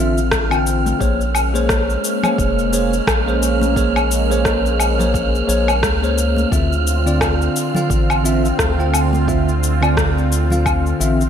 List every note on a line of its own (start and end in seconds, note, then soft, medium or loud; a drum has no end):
0.00 0.94 A1 medium
0.00 0.18 D3 medium
0.00 0.96 D3 medium
0.00 0.18 C4 medium
0.00 0.96 C4 medium
0.00 0.19 F4 medium
0.00 0.96 F4 medium
0.00 0.19 E5 loud
0.00 11.29 F6 medium
0.18 cabasa soft
0.31 kick loud
0.31 cross-stick loud
0.31 cabasa soft
0.50 0.96 D3 medium
0.50 0.97 C4 medium
0.50 0.97 F4 medium
0.50 0.97 G5 loud
0.50 cabasa soft
0.50 low woodblock medium
0.67 cabasa medium
0.86 high conga medium
0.86 cabasa soft
0.99 1.97 A#1 medium
0.99 6.48 G#3 medium
0.99 1.21 A#3 medium
0.99 6.48 A#3 medium
0.99 6.48 C#4 medium
0.99 1.22 G#4 medium
0.99 1.22 C5 medium
0.99 1.22 C#5 medium
0.99 kick loud
0.99 cabasa soft
1.21 cabasa soft
1.35 cabasa medium
1.35 low woodblock medium
1.54 2.18 A#3 medium
1.54 2.19 G#4 medium
1.54 2.19 C5 medium
1.54 2.19 C#5 medium
1.54 cabasa soft
1.69 kick loud
1.69 cross-stick medium
1.69 cabasa soft
1.90 cabasa soft
2.04 cabasa medium
2.23 2.69 A#3 medium
2.23 2.69 G#4 medium
2.23 2.69 C5 medium
2.23 2.70 C#5 medium
2.23 low conga medium
2.23 cabasa soft
2.23 low woodblock medium
2.38 3.01 F1 medium
2.38 kick loud
2.38 cabasa soft
2.59 cabasa soft
2.72 2.94 A#3 medium
2.72 2.94 G#4 medium
2.72 2.95 C5 medium
2.72 2.95 C#5 loud
2.72 cabasa medium
2.93 cabasa soft
3.07 5.42 A#1 medium
3.07 kick loud
3.07 cross-stick loud
3.07 cabasa soft
3.07 low woodblock medium
3.26 3.72 A#3 loud
3.26 3.73 G#4 medium
3.26 3.73 C5 medium
3.26 3.73 C#5 loud
3.26 cabasa soft
3.43 cabasa medium
3.62 high conga medium
3.62 cabasa soft
3.76 3.98 A#3 medium
3.76 3.98 G#4 medium
3.76 3.98 C5 medium
3.76 3.98 C#5 medium
3.76 kick loud
3.76 cabasa soft
3.96 cabasa soft
3.96 low woodblock medium
4.11 cabasa medium
4.30 4.94 A#3 medium
4.30 4.95 G#4 medium
4.30 4.95 C5 medium
4.30 4.95 C#5 loud
4.30 cabasa soft
4.45 kick loud
4.45 cross-stick medium
4.45 cabasa soft
4.66 cabasa soft
4.80 cabasa medium
4.80 low woodblock medium
4.98 5.45 A#3 medium
4.98 5.45 G#4 medium
4.98 5.45 C5 medium
4.98 5.46 C#5 medium
4.98 low conga medium
4.98 cabasa soft
5.14 kick loud
5.14 cabasa soft
5.35 cabasa soft
5.47 5.85 A#1 medium
5.47 5.69 A#3 medium
5.47 5.70 G#4 medium
5.47 5.70 C5 medium
5.47 5.70 C#5 loud
5.47 cabasa medium
5.68 cabasa soft
5.68 low woodblock medium
5.83 6.46 C#2 medium
5.83 kick loud
5.83 cross-stick medium
5.83 cabasa soft
6.02 6.48 A#3 medium
6.02 6.49 G#4 medium
6.02 6.49 C5 medium
6.02 6.49 C#5 loud
6.02 cabasa soft
6.18 cabasa medium
6.36 high conga medium
6.36 cabasa soft
6.51 7.49 D2 medium
6.51 6.73 D3 medium
6.51 11.29 D3 medium
6.51 6.73 C4 medium
6.51 11.29 C4 medium
6.51 11.29 F4 medium
6.51 6.74 F4 medium
6.51 6.74 E5 medium
6.51 kick loud
6.51 cabasa soft
6.73 cabasa soft
6.87 cabasa medium
7.06 7.70 D3 medium
7.06 7.71 C4 medium
7.06 7.71 F4 medium
7.06 7.71 D5 loud
7.06 cabasa soft
7.21 kick loud
7.21 cross-stick medium
7.21 cabasa soft
7.21 low woodblock medium
7.42 cabasa soft
7.56 cabasa medium
7.74 8.21 D3 medium
7.74 8.21 C4 medium
7.74 8.21 F4 medium
7.74 8.22 F5 medium
7.74 low conga medium
7.74 cabasa soft
7.90 8.52 A1 loud
7.90 kick loud
7.90 cabasa soft
8.10 cabasa soft
8.10 low woodblock medium
8.24 8.46 D3 medium
8.24 8.46 C4 medium
8.24 8.46 F4 medium
8.24 8.47 E5 medium
8.24 cabasa medium
8.45 cabasa soft
8.59 10.94 D2 medium
8.59 kick loud
8.59 cross-stick medium
8.59 cabasa soft
8.78 9.24 D3 medium
8.78 9.24 C4 medium
8.78 9.25 F4 medium
8.78 9.25 G5 loud
8.78 cabasa soft
8.94 cabasa medium
8.94 low woodblock medium
9.13 high conga medium
9.13 cabasa soft
9.27 9.49 D3 medium
9.27 9.49 C4 medium
9.27 9.50 F4 medium
9.27 9.50 E5 medium
9.27 kick medium
9.27 cabasa soft
9.49 cabasa soft
9.63 cabasa medium
9.81 10.46 D3 medium
9.81 10.46 C4 medium
9.81 10.47 F4 medium
9.81 10.47 D5 loud
9.81 cabasa soft
9.81 low woodblock medium
9.97 kick loud
9.97 cross-stick medium
9.97 cabasa soft
10.18 cabasa soft
10.32 cabasa medium
10.50 10.96 D3 medium
10.50 10.97 C4 medium
10.50 10.97 F4 medium
10.50 10.97 F5 medium
10.50 low conga medium
10.50 cabasa soft
10.66 kick medium
10.66 cabasa soft
10.66 low woodblock medium
10.86 cabasa soft
10.99 11.29 A1 medium
10.99 11.21 D3 medium
10.99 11.22 C4 medium
10.99 11.22 F4 medium
10.99 11.22 E5 loud
10.99 cabasa medium
11.21 cabasa soft